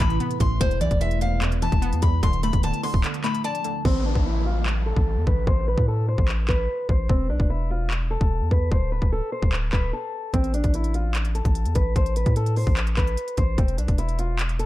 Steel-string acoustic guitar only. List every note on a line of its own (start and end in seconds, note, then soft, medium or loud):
0.00 0.38 B5 medium
0.41 0.60 C6 medium
0.61 0.80 C5 loud
0.81 1.00 D5 medium
1.01 1.20 E5 medium
1.22 1.41 F5 medium
1.62 2.00 A5 medium
2.03 2.22 B5 medium
2.23 2.42 C6 loud
2.43 2.62 B5 medium
2.64 2.83 A5 medium
2.83 3.03 C6 medium
3.24 3.43 B5 medium
3.44 3.82 A5 medium
3.85 4.04 C4 loud
4.05 4.24 D4 medium
4.26 4.45 E4 medium
4.46 4.65 F4 medium
4.86 5.24 A4 medium
5.27 5.46 B4 medium
5.47 5.66 C5 loud
5.68 5.87 B4 medium
5.88 6.07 A4 medium
6.08 6.27 C5 medium
6.49 6.87 B4 medium
6.89 7.08 C5 medium
7.09 7.28 C4 loud
7.30 7.49 D4 medium
7.50 7.69 E4 medium
7.70 7.89 F4 medium
8.11 8.49 A4 medium
8.51 8.70 B4 medium
8.72 8.91 C5 loud
8.92 9.11 B4 medium
9.12 9.31 A4 medium
9.32 9.51 C5 medium
9.73 9.92 B4 medium
9.93 10.31 A4 medium
10.34 10.53 C4 loud
10.54 10.73 D4 medium
10.75 10.94 E4 medium
10.94 11.14 F4 medium
11.35 11.73 A4 medium
11.75 11.95 B4 medium
11.96 12.15 C5 loud
12.17 12.35 B4 medium
12.37 12.56 A4 medium
12.57 12.76 C5 medium
12.97 13.35 B4 medium
13.38 13.57 C5 medium
13.58 13.77 C4 loud
13.78 13.97 D4 medium
13.98 14.18 E4 medium
14.19 14.38 F4 medium
14.59 14.66 A4 medium